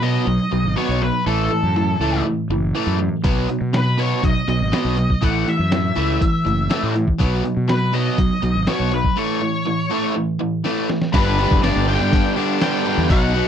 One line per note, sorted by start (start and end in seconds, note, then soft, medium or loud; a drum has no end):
0.00 0.18 B2 medium
0.00 0.26 B2 medium
0.00 0.26 F#3 medium
0.00 0.27 B3 medium
0.00 0.73 D#5 medium
0.27 0.38 B1 medium
0.27 0.50 B2 medium
0.27 0.50 F#3 medium
0.52 0.63 B1 medium
0.52 0.75 B2 medium
0.52 0.75 F#3 medium
0.64 0.75 G#1 medium
0.77 1.00 B2 medium
0.77 1.01 F#3 medium
0.77 1.01 B3 medium
0.77 1.03 C#5 medium
0.89 1.10 B1 medium
1.02 1.24 B2 medium
1.02 1.24 F#3 medium
1.02 1.25 B4 medium
1.26 1.47 A1 medium
1.26 1.50 A2 medium
1.26 1.50 E3 medium
1.26 1.50 A3 medium
1.26 2.21 A4 medium
1.51 1.74 A2 medium
1.51 1.74 E3 medium
1.63 1.94 F#2 medium
1.76 1.98 A2 medium
1.76 1.99 E3 medium
2.00 2.21 C#2 medium
2.00 2.24 A2 medium
2.00 2.24 E3 medium
2.00 2.25 A3 medium
2.25 2.48 A2 medium
2.25 2.48 E3 medium
2.50 2.71 F#1 medium
2.50 2.73 A2 medium
2.50 2.73 E3 medium
2.75 2.98 A2 medium
2.75 2.98 E3 medium
2.75 2.99 A3 medium
2.87 3.08 F#2 medium
2.99 3.22 A2 medium
2.99 3.22 E3 medium
3.24 3.45 B1 medium
3.24 3.47 B2 medium
3.24 3.48 F#3 medium
3.24 3.48 B3 medium
3.24 kick medium
3.24 closed hi-hat medium
3.49 3.71 B2 medium
3.49 3.72 F#3 medium
3.49 closed hi-hat medium
3.61 4.13 B2 medium
3.73 3.96 B2 medium
3.73 3.96 F#3 medium
3.73 3.98 B4 medium
3.73 snare medium
3.73 closed hi-hat medium
3.98 4.21 B2 medium
3.98 4.22 F#3 medium
3.98 4.22 B3 medium
3.98 4.24 C#5 medium
3.98 closed hi-hat medium
4.23 4.34 B1 medium
4.23 4.45 B2 medium
4.23 4.46 F#3 medium
4.23 4.48 D#5 medium
4.23 kick medium
4.23 closed hi-hat medium
4.48 4.58 B1 medium
4.48 4.70 B2 medium
4.48 4.70 F#3 medium
4.48 5.25 D#5 medium
4.48 closed hi-hat medium
4.61 4.71 G#1 medium
4.72 4.96 B2 medium
4.72 4.96 F#3 medium
4.72 4.97 B3 medium
4.72 snare loud
4.72 closed hi-hat medium
4.85 5.06 B1 medium
4.97 5.20 B2 medium
4.97 5.20 F#3 medium
4.97 closed hi-hat medium
5.10 kick medium
5.22 5.43 A1 medium
5.22 5.45 A2 medium
5.22 5.46 E3 medium
5.22 5.46 A3 medium
5.22 5.49 F#5 medium
5.22 kick medium
5.22 closed hi-hat medium
5.47 5.69 A2 medium
5.47 5.69 E3 medium
5.47 6.92 E5 medium
5.47 closed hi-hat medium
5.59 5.90 F#2 medium
5.72 5.94 A2 medium
5.72 5.94 E3 medium
5.72 snare medium
5.72 closed hi-hat medium
5.96 6.17 C#2 medium
5.96 6.19 A2 medium
5.96 6.20 E3 medium
5.96 6.20 A3 medium
5.96 closed hi-hat medium
6.21 6.43 A2 medium
6.21 6.43 E3 medium
6.21 kick medium
6.21 closed hi-hat medium
6.46 6.67 F#1 medium
6.46 6.68 A2 medium
6.46 6.68 E3 medium
6.46 closed hi-hat medium
6.70 6.94 A2 medium
6.70 6.94 E3 medium
6.70 6.94 A3 medium
6.70 snare loud
6.70 closed hi-hat medium
6.83 7.04 A2 medium
6.95 7.18 A2 medium
6.95 7.18 E3 medium
6.95 closed hi-hat medium
7.08 kick medium
7.20 7.41 B1 medium
7.20 7.43 B2 medium
7.20 7.44 F#3 medium
7.20 7.44 B3 medium
7.20 kick medium
7.20 closed hi-hat medium
7.44 7.67 B2 medium
7.44 7.67 F#3 medium
7.44 closed hi-hat soft
7.57 8.09 B2 medium
7.69 7.91 B2 medium
7.69 7.91 F#3 medium
7.69 7.95 B4 medium
7.69 snare medium
7.69 closed hi-hat medium
7.93 8.17 B2 medium
7.93 8.17 F#3 medium
7.93 8.18 B3 medium
7.93 8.68 D#5 medium
7.93 closed hi-hat medium
8.18 8.29 B1 medium
8.18 8.41 B2 medium
8.18 8.41 F#3 medium
8.18 kick medium
8.18 closed hi-hat medium
8.43 8.53 B1 medium
8.43 8.66 B2 medium
8.43 8.66 F#3 medium
8.43 closed hi-hat medium
8.55 8.66 G#1 medium
8.67 8.91 B2 medium
8.67 8.91 F#3 medium
8.67 8.92 B3 medium
8.67 8.91 C#5 medium
8.67 snare medium
8.67 closed hi-hat medium
8.80 9.01 B1 medium
8.91 9.15 B2 medium
8.91 9.15 F#3 medium
8.91 9.16 B4 medium
8.91 closed hi-hat medium
9.04 kick medium
9.17 9.40 A2 medium
9.17 9.41 E3 medium
9.17 9.41 A3 medium
9.17 10.12 C#5 medium
9.42 9.64 A2 medium
9.42 9.64 E3 medium
9.67 9.89 A2 medium
9.67 9.89 E3 medium
9.91 10.14 A2 medium
9.91 10.15 E3 medium
9.91 10.15 A3 medium
10.16 10.38 A2 medium
10.16 10.38 E3 medium
10.40 10.63 A2 medium
10.40 10.63 E3 medium
10.65 10.88 A2 medium
10.65 10.88 E3 medium
10.65 10.89 A3 medium
10.65 snare soft
10.89 11.12 A2 medium
10.89 11.12 E3 medium
10.89 snare medium
11.02 snare medium
11.13 11.45 G1 loud
11.13 11.37 G2 loud
11.13 11.61 G2 medium
11.13 11.38 D3 loud
11.13 11.62 D3 loud
11.13 11.38 G3 loud
11.13 11.41 G3 medium
11.13 11.40 B3 medium
11.13 11.39 D4 loud
11.13 11.59 B4 medium
11.13 kick loud
11.13 open hi-hat medium
11.13 crash loud
11.17 11.37 G4 loud
11.38 11.61 G2 medium
11.38 11.62 D3 medium
11.38 11.62 G3 medium
11.38 11.63 G3 medium
11.38 11.65 B3 medium
11.38 11.64 D4 medium
11.38 11.65 G4 medium
11.38 open hi-hat medium
11.51 11.61 E1 medium
11.51 kick medium
11.62 11.74 G1 medium
11.62 11.86 G2 medium
11.62 12.61 G2 medium
11.62 11.87 D3 medium
11.62 12.61 D3 medium
11.62 11.87 G3 loud
11.62 12.39 G3 medium
11.62 12.38 B3 medium
11.62 12.37 D4 loud
11.62 11.85 D5 medium
11.62 snare loud
11.62 open hi-hat medium
11.66 12.35 G4 loud
11.75 11.96 G1 medium
11.87 12.10 G2 medium
11.87 12.11 D3 medium
11.87 12.11 G3 medium
11.87 12.36 G3 medium
11.87 12.36 B3 medium
11.87 12.35 D4 medium
11.87 12.33 G5 loud
11.87 open hi-hat medium
12.00 12.21 G2 medium
12.11 12.35 G2 medium
12.11 12.36 D3 loud
12.11 12.36 G3 medium
12.11 kick loud
12.11 open hi-hat medium
12.36 12.59 G2 medium
12.36 12.60 D3 medium
12.36 12.60 G3 medium
12.36 12.59 G3 medium
12.36 12.60 B3 medium
12.36 12.61 D4 medium
12.36 12.62 G4 medium
12.36 open hi-hat medium
12.60 13.08 G2 medium
12.60 12.84 G2 medium
12.60 13.08 D3 loud
12.60 12.84 D3 loud
12.60 12.87 G3 medium
12.60 12.85 G3 loud
12.60 12.87 B3 medium
12.60 12.86 D4 medium
12.60 12.84 G4 medium
12.60 13.10 G5 medium
12.60 snare loud
12.60 open hi-hat medium
12.85 13.08 G2 medium
12.85 13.09 D3 medium
12.85 13.09 G3 medium
12.85 13.10 G3 medium
12.85 13.10 B3 medium
12.85 13.09 D4 medium
12.85 13.09 G4 medium
12.85 open hi-hat medium
12.98 13.08 E2 medium
13.09 13.41 B1 loud
13.09 13.32 B2 medium
13.09 13.48 B2 medium
13.09 13.34 F#3 loud
13.09 13.48 F#3 loud
13.09 13.33 B3 loud
13.09 13.36 B3 medium
13.09 13.35 D#4 medium
13.09 13.34 F#4 loud
13.09 13.48 F#5 loud
13.09 kick loud
13.09 open hi-hat medium
13.33 13.48 B2 medium
13.33 13.48 F#3 medium
13.33 13.48 B3 medium
13.33 13.48 D#4 medium
13.33 13.48 F#4 medium
13.33 open hi-hat medium
13.37 13.48 B3 medium